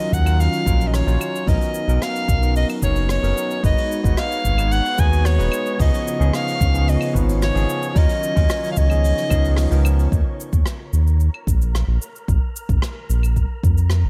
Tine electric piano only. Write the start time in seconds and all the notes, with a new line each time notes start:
Already playing: F#3 C#4 D#4 F4 A#4
0.25 F#3 C#4 D#4 F4 A#4
0.65 F#3 C#4 D#4 F4 A#4
1.06 F#3 C#4 D#4 F4 C#5
1.46 F#3 B3 C#4 D#4 A#4
1.88 F#3 B3 C#4 D#4 A#4
2.41 F#3 B3 C#4 D#4 A#4
2.82 F#3 B3 C#4 D#4 C#5
3.22 F#3 B3 C#4 D#4 A#4
3.62 G#3 B3 D#4 F#4 B4
4.03 G#3 B3 D#4 F#4 B4
4.57 G#3 B3 D#4 F#4 B4
4.98 G#3 B3 D#4 F#4 D#5
5.38 G#3 B3 D#4 F#4 B4
5.78 F3 B3 C#4 D#4 G#4
6.19 F3 B3 C#4 D#4 G#4
6.73 F3 B3 C#4 D#4 G#4
7.13 F3 B3 C#4 D#4 B4
7.54 F3 B3 C#4 D#4 G#4
7.94 F#3 C#4 D#4 F4 A#4
8.35 F#3 C#4 D#4 F4 A#4
8.89 F3 B3 C#4 D#4 G#4
9.29 F3 B3 C#4 D#4 G#4
9.70 F3 B3 C#4 D#4 A#4